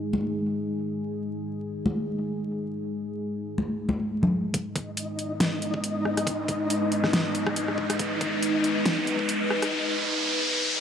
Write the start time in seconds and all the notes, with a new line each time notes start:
Already playing: G#3 D#4 G#4
0.13 high conga
1.86 high conga
3.58 high conga
3.89 high conga
4.23 low conga
4.54 G#3 D#4 B4 D#5, kick, closed hi-hat, riser
4.76 kick, closed hi-hat
4.97 closed hi-hat
5.19 closed hi-hat
5.40 snare, closed hi-hat
5.62 closed hi-hat
5.74 kick
5.84 closed hi-hat
6.05 cross-stick
6.17 cross-stick, closed hi-hat
6.27 kick, closed hi-hat
6.48 kick, closed hi-hat
6.70 closed hi-hat
6.92 closed hi-hat
7.04 cross-stick, snare
7.13 snare, closed hi-hat
7.35 closed hi-hat
7.47 kick, cross-stick
7.56 closed hi-hat
7.68 cross-stick
7.78 kick
7.90 cross-stick, closed hi-hat
7.99 kick, closed hi-hat
8.21 kick, closed hi-hat
8.42 closed hi-hat
8.64 closed hi-hat
8.86 snare, closed hi-hat
9.07 closed hi-hat
9.19 kick
9.29 closed hi-hat
9.50 cross-stick
9.62 cross-stick, closed hi-hat